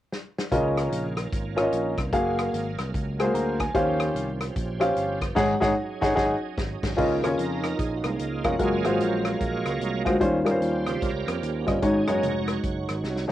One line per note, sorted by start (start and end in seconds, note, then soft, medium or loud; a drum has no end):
0.12 snare medium
0.38 snare medium
0.51 0.86 C#2 medium
0.51 1.14 C#3 medium
0.51 2.12 D#3 medium
0.51 3.72 A#3 medium
0.51 1.03 C#4 medium
0.51 2.12 C#4 medium
0.51 1.03 F4 medium
0.51 2.12 F4 medium
0.51 1.04 A#4 medium
0.51 1.04 D#5 medium
0.51 kick loud
0.51 closed hi-hat medium
0.77 cross-stick loud
0.77 closed hi-hat medium
0.91 1.26 A#1 medium
0.91 closed hi-hat medium
1.17 cross-stick loud
1.17 closed hi-hat medium
1.32 1.67 G#1 medium
1.32 kick loud
1.32 closed hi-hat medium
1.56 1.93 C#4 medium
1.56 1.93 F4 medium
1.56 1.93 A#4 medium
1.56 1.61 C#5 medium
1.56 cross-stick loud
1.56 closed hi-hat medium
1.62 1.96 D#5 medium
1.73 1.95 A#1 medium
1.73 closed hi-hat medium
1.98 2.11 C2 medium
1.98 kick medium
1.98 cross-stick loud
1.98 closed hi-hat medium
2.13 2.48 F#1 medium
2.13 3.74 F#3 medium
2.13 2.65 A#3 medium
2.13 2.65 F#4 medium
2.13 2.65 G#4 medium
2.13 3.74 G#4 medium
2.13 2.65 F5 medium
2.13 3.74 F5 medium
2.13 kick loud
2.13 closed hi-hat medium
2.39 cross-stick loud
2.39 closed hi-hat medium
2.54 2.75 G#1 medium
2.54 closed hi-hat medium
2.79 2.92 C2 medium
2.79 cross-stick loud
2.79 closed hi-hat medium
2.95 3.29 C#2 medium
2.95 kick loud
2.95 closed hi-hat medium
3.19 3.23 G#3 medium
3.19 3.56 F#4 medium
3.19 3.56 G#4 medium
3.19 3.56 C5 medium
3.19 cross-stick loud
3.19 closed hi-hat medium
3.24 3.58 A#3 medium
3.34 3.69 D2 medium
3.34 3.59 A#5 medium
3.34 closed hi-hat medium
3.60 3.98 G#5 medium
3.60 kick medium
3.60 cross-stick loud
3.60 closed hi-hat medium
3.75 4.09 D#2 medium
3.75 4.37 D#3 medium
3.75 5.35 F3 medium
3.75 4.26 C#4 medium
3.75 6.95 C#4 medium
3.75 4.26 G4 medium
3.75 5.35 G4 medium
3.75 5.35 C5 medium
3.75 4.26 C5 medium
3.75 4.27 F5 medium
3.75 kick loud
3.75 closed hi-hat medium
4.00 cross-stick loud
4.00 closed hi-hat medium
4.15 4.49 C2 medium
4.15 closed hi-hat medium
4.41 cross-stick loud
4.41 closed hi-hat medium
4.56 4.90 A#1 medium
4.56 kick loud
4.56 closed hi-hat medium
4.80 5.17 C#4 medium
4.80 5.17 G4 medium
4.80 5.17 C5 medium
4.80 5.17 F5 medium
4.80 cross-stick loud
4.80 closed hi-hat medium
4.96 5.30 G1 medium
4.96 closed hi-hat medium
5.21 kick medium
5.21 cross-stick loud
5.21 closed hi-hat medium
5.35 5.54 G#1 medium
5.35 5.54 G#2 medium
5.35 6.97 F#3 medium
5.35 5.53 D#4 medium
5.35 6.97 D#4 medium
5.35 5.54 G#4 loud
5.35 6.97 G#4 medium
5.35 5.54 C#5 medium
5.35 5.54 F#5 loud
5.35 kick loud
5.35 snare loud
5.35 crash medium
5.60 5.72 G#1 medium
5.60 5.72 G#2 medium
5.60 5.71 D#4 medium
5.60 5.71 G#4 medium
5.60 5.72 C#5 medium
5.60 5.72 F#5 medium
5.60 kick medium
5.60 snare loud
6.01 6.12 G#1 medium
6.01 6.12 D#4 medium
6.01 6.12 G#4 medium
6.01 6.12 C#5 medium
6.01 6.12 F#5 medium
6.01 kick medium
6.01 snare medium
6.15 6.35 G#1 medium
6.15 6.33 D#4 medium
6.15 6.33 G#4 medium
6.15 6.34 C#5 medium
6.15 6.34 F#5 medium
6.15 kick loud
6.15 snare medium
6.58 6.75 G#1 medium
6.58 kick loud
6.58 snare medium
6.83 6.93 G#1 medium
6.83 kick loud
6.83 snare medium
6.83 crash medium
6.97 7.20 C#2 medium
6.97 7.60 C#3 medium
6.97 7.28 D#3 soft
6.97 8.58 F3 medium
6.97 7.29 F3 soft
6.97 10.18 A#3 medium
6.97 7.28 A#3 medium
6.97 7.13 C#4 medium
6.97 8.58 C#4 medium
6.97 8.58 D#4 medium
6.97 7.13 F4 medium
6.97 7.14 A#4 medium
6.97 7.14 D#5 medium
6.97 kick loud
6.97 crash medium
7.22 7.36 D#2 medium
7.22 7.70 C#4 medium
7.22 7.70 F4 medium
7.22 7.38 G#4 medium
7.22 7.70 A#4 medium
7.22 7.71 C#5 medium
7.22 cross-stick loud
7.22 closed hi-hat medium
7.37 7.73 F2 medium
7.37 7.78 D#4 medium
7.37 7.78 F4 medium
7.37 7.80 A#4 medium
7.37 closed hi-hat medium
7.64 cross-stick loud
7.64 closed hi-hat medium
7.79 8.01 A#1 medium
7.79 8.56 D#4 medium
7.79 8.03 F4 medium
7.79 7.94 G#4 medium
7.79 kick loud
7.79 closed hi-hat medium
7.96 8.05 F#4 medium
8.04 8.17 C2 medium
8.04 8.56 G#3 medium
8.04 8.56 A#3 medium
8.04 8.46 F4 medium
8.04 cross-stick loud
8.04 closed hi-hat medium
8.19 8.41 C#2 medium
8.19 closed hi-hat medium
8.44 8.57 F1 medium
8.44 8.54 C#4 medium
8.44 8.54 F4 medium
8.44 8.61 F#4 medium
8.44 8.54 A#4 medium
8.44 8.54 F5 medium
8.44 kick medium
8.44 cross-stick loud
8.44 closed hi-hat medium
8.59 8.81 F#1 medium
8.59 10.20 F#3 medium
8.59 10.17 F#3 soft
8.59 8.75 G#3 medium
8.59 10.19 G#3 medium
8.59 10.18 G#3 soft
8.59 10.17 A#3 medium
8.59 9.37 C#4 medium
8.59 8.75 F4 medium
8.59 8.75 F#4 medium
8.59 9.02 G#4 medium
8.59 8.75 A#4 medium
8.59 11.79 F5 medium
8.59 9.37 F5 medium
8.59 kick loud
8.59 closed hi-hat medium
8.84 8.98 G#1 medium
8.84 9.31 G#3 medium
8.84 9.32 F4 medium
8.84 9.32 F#4 medium
8.84 9.32 C5 medium
8.84 cross-stick loud
8.84 closed hi-hat medium
9.00 9.34 A#1 medium
9.00 10.03 F4 medium
9.00 10.03 A#4 medium
9.00 10.03 C#5 medium
9.00 closed hi-hat medium
9.25 cross-stick loud
9.25 closed hi-hat medium
9.41 9.62 A#1 medium
9.41 kick loud
9.41 closed hi-hat medium
9.66 9.78 C#2 medium
9.66 cross-stick loud
9.66 closed hi-hat medium
9.80 10.02 C2 medium
9.80 closed hi-hat medium
10.05 10.19 D2 medium
10.05 10.15 G#3 medium
10.05 10.15 F4 medium
10.05 10.15 F#4 medium
10.05 10.15 C5 medium
10.05 kick medium
10.05 cross-stick loud
10.05 closed hi-hat medium
10.20 10.43 D#2 medium
10.20 10.82 D#3 medium
10.20 10.36 G3 medium
10.20 11.81 G3 medium
10.20 10.36 C#4 medium
10.20 11.81 C#4 medium
10.20 10.36 F4 medium
10.20 11.81 C5 medium
10.20 10.36 C5 medium
10.20 kick loud
10.20 closed hi-hat medium
10.45 10.58 G2 medium
10.45 10.92 G3 medium
10.45 10.93 C#4 medium
10.45 10.93 F4 medium
10.45 10.50 A#4 medium
10.45 10.61 A#4 medium
10.45 cross-stick loud
10.45 closed hi-hat medium
10.51 10.96 C5 medium
10.60 10.95 D#2 medium
10.60 11.25 F4 medium
10.60 11.02 G4 medium
10.60 11.03 C5 medium
10.60 closed hi-hat medium
10.86 11.11 C#3 medium
10.86 11.11 F3 soft
10.86 11.11 G3 soft
10.86 11.11 C4 medium
10.86 cross-stick loud
10.86 closed hi-hat medium
11.01 11.24 C#2 medium
11.01 11.26 C#4 medium
11.01 11.66 G4 medium
11.01 11.28 A#4 medium
11.01 kick loud
11.01 closed hi-hat medium
11.26 11.40 F2 medium
11.26 11.79 A#3 medium
11.26 11.79 C#4 medium
11.26 11.61 F4 medium
11.26 cross-stick loud
11.26 closed hi-hat medium
11.42 11.64 D#2 medium
11.42 closed hi-hat medium
11.61 11.68 F#4 medium
11.66 11.80 G1 medium
11.66 11.76 G3 medium
11.66 11.76 C#4 medium
11.66 11.76 F4 medium
11.66 11.83 G4 medium
11.66 11.76 D#5 medium
11.66 kick medium
11.66 cross-stick loud
11.66 closed hi-hat medium
11.82 12.04 G#1 medium
11.82 12.44 G#2 medium
11.82 13.32 F#3 medium
11.82 11.98 G#3 medium
11.82 13.32 G#3 medium
11.82 13.32 C#4 medium
11.82 12.60 C#4 medium
11.82 11.98 D#4 medium
11.82 13.32 D#4 medium
11.82 12.60 D#4 medium
11.82 11.98 F#4 medium
11.82 12.24 G#4 medium
11.82 11.98 C#5 medium
11.82 kick loud
11.82 closed hi-hat medium
12.07 12.21 F#1 medium
12.07 12.32 C#3 medium
12.07 12.32 F#3 soft
12.07 12.54 G#3 medium
12.07 12.32 A#3 medium
12.07 12.55 D#4 medium
12.07 12.55 F#4 medium
12.07 12.55 C#5 medium
12.07 cross-stick loud
12.07 closed hi-hat medium
12.22 12.57 F1 medium
12.22 13.26 F#4 medium
12.22 13.25 C#5 medium
12.22 closed hi-hat medium
12.48 cross-stick loud
12.48 closed hi-hat medium
12.64 12.85 F#1 medium
12.64 kick loud
12.64 closed hi-hat medium
12.89 13.02 G#1 medium
12.89 cross-stick loud
12.89 closed hi-hat medium
13.04 13.25 C2 medium
13.04 snare soft
13.16 snare medium
13.28 13.32 C#2 medium
13.28 13.32 G#3 medium
13.28 13.32 D#4 medium
13.28 13.32 F#4 medium